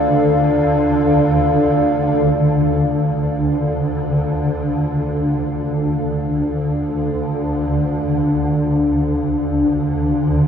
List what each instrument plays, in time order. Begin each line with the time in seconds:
Already playing: synth drone D2 D3, analog synth pad D4 A4 D5 F5
2.33 synth drone D2 D3